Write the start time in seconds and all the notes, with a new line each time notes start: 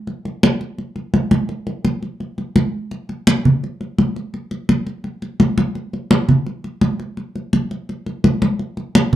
0.07 high conga
0.25 high conga
0.43 high conga
0.61 high conga
0.78 high conga
0.96 high conga
1.14 high conga
1.31 high conga
1.49 high conga
1.67 high conga
1.85 high conga
2.02 high conga
2.20 high conga
2.38 high conga
2.56 high conga
2.91 high conga
3.09 high conga
3.27 high conga
3.45 high conga, low conga
3.64 high conga
3.81 high conga
3.98 high conga
4.16 high conga
4.34 high conga
4.51 high conga
4.69 high conga
4.87 high conga
5.04 high conga
5.22 high conga
5.40 high conga
5.58 high conga
5.75 high conga
5.93 high conga
6.11 high conga
6.29 high conga, low conga
6.46 high conga
6.64 high conga
6.81 high conga
7.00 high conga
7.17 high conga
7.35 high conga
7.53 high conga
7.71 high conga
7.89 high conga
8.06 high conga
8.24 high conga
8.42 high conga
8.59 high conga
8.77 high conga
8.95 high conga
9.13 high conga, low conga